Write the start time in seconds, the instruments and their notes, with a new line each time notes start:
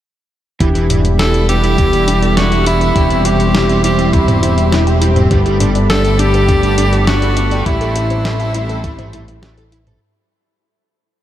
0.60 analog synth bass E1, overdriven electric guitar E3, analog synth pad G3 D5 E5 B5, analog polysynth B3 D4 E4 G4, synth arpeggio sound D4, kick, closed hi-hat
0.75 overdriven electric guitar E3, synth arpeggio sound G4, closed hi-hat
0.90 overdriven electric guitar E3, synth arpeggio sound D4, closed hi-hat, mid tom
1.04 synth arpeggio sound B4, closed hi-hat
1.19 overdriven electric guitar E3, synth arpeggio sound D4, tenor saxophone A4, snare, closed hi-hat
1.34 overdriven electric guitar E4, synth arpeggio sound D5, closed hi-hat
1.49 overdriven electric guitar B3, analog polysynth B3 D4 E4 G4, synth arpeggio sound D4, tenor saxophone G4, closed hi-hat
1.63 overdriven electric guitar E4, synth arpeggio sound G4, closed hi-hat
1.78 overdriven electric guitar E3, synth arpeggio sound D4, kick, closed hi-hat
1.93 overdriven electric guitar E3, synth arpeggio sound B4, closed hi-hat
2.07 overdriven electric guitar E3, synth arpeggio sound D4, closed hi-hat
2.22 analog polysynth B3 D4 E4 A4, synth arpeggio sound D5, closed hi-hat
2.37 overdriven electric guitar E3, synth arpeggio sound D4, tenor saxophone F#4, snare, closed hi-hat
2.52 overdriven electric guitar E4, synth arpeggio sound G4, closed hi-hat
2.66 overdriven electric guitar B3, synth arpeggio sound D4, tenor saxophone E4, closed hi-hat
2.81 overdriven electric guitar E4, synth arpeggio sound B4, closed hi-hat
2.95 analog synth bass E1, overdriven electric guitar C3, analog polysynth G3 C4 E4 G4, synth arpeggio sound E4, analog synth pad C5 C6, kick, closed hi-hat
3.10 overdriven electric guitar C3, synth arpeggio sound G5, closed hi-hat
3.25 overdriven electric guitar C3, synth arpeggio sound E4, tenor saxophone G4, closed hi-hat
3.40 synth arpeggio sound C5, closed hi-hat
3.54 overdriven electric guitar C3, synth arpeggio sound E4, snare, closed hi-hat
3.69 overdriven electric guitar C4, synth arpeggio sound E5, closed hi-hat
3.84 analog polysynth G3 C4 E4 G4, overdriven electric guitar G3, synth arpeggio sound E4, tenor saxophone G4, closed hi-hat
3.98 overdriven electric guitar C4, synth arpeggio sound G5, closed hi-hat
4.13 overdriven electric guitar C3, synth arpeggio sound E4, tenor saxophone E4, kick, closed hi-hat
4.28 overdriven electric guitar C3, synth arpeggio sound C5, closed hi-hat, mid tom
4.43 overdriven electric guitar C3, synth arpeggio sound E4, closed hi-hat
4.58 synth arpeggio sound E5, closed hi-hat
4.72 overdriven electric guitar C3, synth arpeggio sound E4, snare, closed hi-hat
4.87 overdriven electric guitar C4, synth arpeggio sound G5, closed hi-hat
5.01 analog polysynth G3 C4 E4 G4, overdriven electric guitar G3, synth arpeggio sound E4, closed hi-hat
5.16 overdriven electric guitar C4, synth arpeggio sound C5, closed hi-hat, mid tom
5.31 analog synth bass G1, overdriven electric guitar G3, analog polysynth A3 B3 D4 G4, synth arpeggio sound D4, analog synth pad D5 A5 B5, kick, closed hi-hat
5.46 overdriven electric guitar G3, synth arpeggio sound B4, closed hi-hat
5.60 overdriven electric guitar G3, synth arpeggio sound D4, closed hi-hat, mid tom
5.75 synth arpeggio sound D5, closed hi-hat
5.90 overdriven electric guitar G3, synth arpeggio sound D4, tenor saxophone A4, snare, closed hi-hat
6.04 overdriven electric guitar G4, synth arpeggio sound A4, closed hi-hat
6.19 analog polysynth A3 B3 D4 G4, synth arpeggio sound D4, overdriven electric guitar D4, tenor saxophone G4, closed hi-hat
6.34 overdriven electric guitar G4, synth arpeggio sound B4, closed hi-hat
6.48 overdriven electric guitar G3, synth arpeggio sound D4, kick, closed hi-hat
6.63 overdriven electric guitar G3, synth arpeggio sound D5, closed hi-hat
6.78 overdriven electric guitar G3, synth arpeggio sound D4, closed hi-hat
6.93 analog polysynth A3 B3 D4 A4, synth arpeggio sound A4, closed hi-hat
7.07 overdriven electric guitar G3, synth arpeggio sound D4, tenor saxophone F#4, snare, closed hi-hat
7.22 overdriven electric guitar G4, synth arpeggio sound B4, closed hi-hat
7.37 overdriven electric guitar D4, synth arpeggio sound D4, closed hi-hat
7.51 overdriven electric guitar G4, synth arpeggio sound D5, closed hi-hat
7.66 analog synth bass A1, analog polysynth A3 C4 E4 G4, overdriven electric guitar A3, tenor saxophone E4, synth arpeggio sound E4, analog synth pad E5 C6, kick, closed hi-hat
7.81 overdriven electric guitar A3, synth arpeggio sound A4, closed hi-hat
7.96 overdriven electric guitar A3, synth arpeggio sound E4, closed hi-hat
8.10 synth arpeggio sound C5, closed hi-hat
8.25 overdriven electric guitar A3, synth arpeggio sound E4, snare, closed hi-hat
8.40 overdriven electric guitar A4, synth arpeggio sound E5, closed hi-hat
8.54 analog polysynth A3 C4 E4 G4, overdriven electric guitar E4, synth arpeggio sound E4, closed hi-hat
8.69 overdriven electric guitar A4, synth arpeggio sound A4, closed hi-hat
8.84 overdriven electric guitar A3, synth arpeggio sound E4, kick, closed hi-hat
8.99 overdriven electric guitar A3, synth arpeggio sound C5, closed hi-hat, mid tom
9.13 overdriven electric guitar A3, synth arpeggio sound E4, closed hi-hat
9.28 synth arpeggio sound E5, closed hi-hat
9.43 overdriven electric guitar A3, analog polysynth A3 C4 E4 F#4, synth arpeggio sound E4, snare, closed hi-hat
9.57 overdriven electric guitar A4, synth arpeggio sound A4, closed hi-hat
9.72 synth arpeggio sound E4, overdriven electric guitar E4, closed hi-hat
9.87 overdriven electric guitar A4, synth arpeggio sound C5, closed hi-hat, mid tom